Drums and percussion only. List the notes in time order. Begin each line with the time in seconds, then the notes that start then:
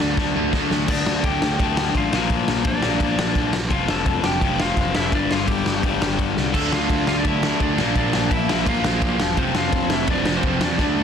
0.17 kick, snare
0.53 kick, snare
0.71 snare
0.88 kick, crash
1.06 snare
1.24 kick, ride
1.42 snare
1.59 kick, ride
1.77 snare
1.95 kick, ride
2.13 snare
2.30 kick, ride
2.48 snare
2.65 kick, ride
2.82 snare
3.00 kick, ride
3.19 snare
3.35 kick, ride
3.53 snare
3.71 kick, ride
3.88 snare
4.06 kick, ride
4.24 snare
4.41 kick, ride
4.60 snare
4.77 kick, ride
4.95 snare
5.12 kick, ride
5.31 snare
5.48 kick, ride
5.66 snare
5.83 kick, ride
6.02 snare
6.19 kick, ride
6.37 snare
6.54 kick, crash
6.72 snare
6.89 kick, ride
7.07 snare
7.25 kick, ride
7.43 snare
7.60 kick, ride
7.78 snare
7.95 kick, ride
8.13 snare
8.31 kick, ride
8.49 snare
8.66 kick, ride
8.84 snare
9.02 kick, ride
9.20 snare
9.37 kick, ride
9.55 snare
9.73 kick, ride
9.90 snare
10.07 kick, ride
10.25 snare
10.43 kick, ride
10.61 snare
10.79 kick, snare